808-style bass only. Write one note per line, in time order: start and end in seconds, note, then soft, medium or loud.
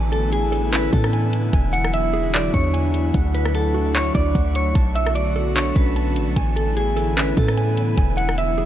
0.00 0.89 A1 loud
0.93 1.51 A2 loud
1.53 2.50 E1 loud
2.54 3.12 E2 loud
3.14 4.11 D2 loud
4.15 4.34 D2 loud
4.35 4.74 D2 loud
4.75 5.72 B1 loud
5.76 6.18 B1 loud
6.16 6.28 A1 loud
6.26 6.36 B1 medium
6.37 7.33 A1 loud
7.37 7.95 A2 loud
7.98 8.65 E1 loud